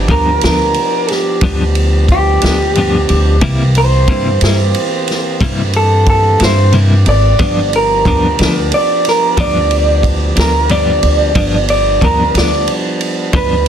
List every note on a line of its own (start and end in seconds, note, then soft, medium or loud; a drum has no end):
0.00 3.37 F3 medium
0.00 3.37 B3 medium
0.00 3.37 D4 medium
0.00 3.37 G4 medium
0.08 0.39 D2 medium
0.08 0.29 G2 medium
0.08 0.29 F3 medium
0.08 0.29 B3 medium
0.08 0.30 D4 medium
0.08 0.42 A#4 medium
0.08 kick medium
0.08 ride medium
0.41 0.74 D2 medium
0.41 0.64 F3 soft
0.41 0.63 B3 soft
0.41 0.63 D4 medium
0.41 1.10 A#4 medium
0.41 snare loud
0.41 ride medium
0.74 ride medium
1.08 2.06 G4 medium
1.08 snare soft
1.08 ride medium
1.41 2.38 D2 medium
1.41 1.62 G2 medium
1.41 1.63 F3 medium
1.41 1.63 B3 medium
1.41 1.63 D4 medium
1.41 kick loud
1.41 ride medium
1.75 ride medium
2.08 3.39 G4 medium
2.08 kick medium
2.08 ride medium
2.42 3.05 D2 medium
2.42 2.64 F3 soft
2.42 2.63 B3 soft
2.42 2.62 D4 medium
2.42 snare loud
2.42 ride medium
2.75 2.96 G2 medium
2.75 2.96 F3 medium
2.75 2.97 B3 medium
2.75 2.97 D4 medium
2.75 ride medium
3.09 3.40 D2 medium
3.09 ride medium
3.40 4.04 C2 medium
3.40 3.61 C3 medium
3.40 7.35 E3 medium
3.40 3.62 G3 medium
3.40 7.35 A#3 medium
3.40 3.62 A#3 medium
3.40 7.35 C4 medium
3.40 3.62 E4 medium
3.40 7.35 G4 medium
3.40 kick loud
3.40 ride medium
3.75 5.71 C5 loud
3.75 ride medium
4.08 4.38 G2 medium
4.08 4.28 C3 medium
4.08 4.29 G3 medium
4.08 4.29 A#3 medium
4.08 4.29 E4 medium
4.08 kick medium
4.08 ride medium
4.41 4.72 G2 medium
4.41 4.63 G3 soft
4.41 4.62 A#3 soft
4.41 4.62 E4 medium
4.41 snare loud
4.41 ride medium
4.74 ride medium
5.08 snare soft
5.08 ride medium
5.41 6.36 G2 medium
5.41 5.61 C3 medium
5.41 5.61 G3 medium
5.41 5.61 A#3 medium
5.41 5.62 E4 medium
5.41 kick loud
5.41 ride medium
5.73 6.07 A4 medium
5.73 ride medium
6.06 6.40 A4 medium
6.06 kick medium
6.06 ride medium
6.40 7.02 G2 medium
6.40 6.61 G3 soft
6.40 6.61 A#3 soft
6.40 6.60 E4 medium
6.40 snare loud
6.40 ride medium
6.44 6.74 C5 medium
6.72 6.93 C3 medium
6.72 6.93 G3 medium
6.72 6.94 A#3 medium
6.72 6.94 E4 medium
6.72 ride medium
7.06 7.37 G#1 medium
7.06 7.72 D5 medium
7.06 ride medium
7.39 8.02 G1 medium
7.39 7.59 G2 medium
7.39 7.59 F3 medium
7.39 11.32 F3 medium
7.39 11.32 B3 medium
7.39 7.60 B3 medium
7.39 11.33 D4 medium
7.39 7.60 D4 medium
7.39 11.32 G4 medium
7.39 kick loud
7.39 ride medium
7.73 8.71 A#4 medium
7.73 ride medium
8.05 8.36 D2 medium
8.05 8.25 G2 medium
8.05 8.26 F3 medium
8.05 8.26 B3 medium
8.05 8.26 D4 medium
8.05 kick medium
8.05 ride medium
8.39 8.70 D2 medium
8.39 8.60 F3 soft
8.39 8.59 B3 medium
8.39 8.59 D4 medium
8.39 snare loud
8.39 ride medium
8.72 9.05 D5 medium
8.72 ride medium
9.05 snare soft
9.05 ride medium
9.09 9.39 A#4 medium
9.37 10.33 D2 medium
9.37 9.57 G2 medium
9.37 9.58 F3 medium
9.37 9.58 B3 medium
9.37 9.58 D4 medium
9.37 10.03 D5 medium
9.37 kick loud
9.37 ride medium
9.71 ride medium
10.03 kick medium
10.03 ride medium
10.36 10.99 D2 medium
10.36 10.58 F3 soft
10.36 10.57 B3 soft
10.36 10.56 D4 soft
10.36 10.70 A#4 medium
10.36 snare loud
10.36 ride medium
10.69 10.90 G2 medium
10.69 10.90 F3 medium
10.69 10.90 B3 medium
10.69 10.91 D4 medium
10.69 11.67 D5 medium
10.69 ride medium
11.03 11.33 D2 medium
11.03 ride medium
11.35 11.98 G1 medium
11.35 11.56 G2 medium
11.35 13.68 F3 medium
11.35 11.56 F3 medium
11.35 13.68 G3 medium
11.35 13.68 B3 medium
11.35 11.56 B3 medium
11.35 13.68 D4 medium
11.35 11.57 D4 medium
11.35 kick loud
11.35 ride medium
11.68 12.02 D5 medium
11.68 ride medium
12.01 12.32 D2 medium
12.01 12.22 G2 medium
12.01 12.22 F3 medium
12.01 12.23 B3 medium
12.01 12.23 D4 medium
12.01 12.35 A#4 medium
12.01 kick medium
12.01 ride medium
12.34 12.65 D2 medium
12.34 12.56 F3 soft
12.34 12.55 B3 soft
12.34 12.55 D4 soft
12.34 12.69 D5 medium
12.34 snare loud
12.34 ride medium
12.68 ride medium
13.01 ride medium
13.33 13.68 D2 medium
13.33 13.53 G2 medium
13.33 13.54 F3 medium
13.33 13.54 B3 medium
13.33 13.54 D4 medium
13.33 13.68 B4 medium
13.33 kick loud
13.33 ride medium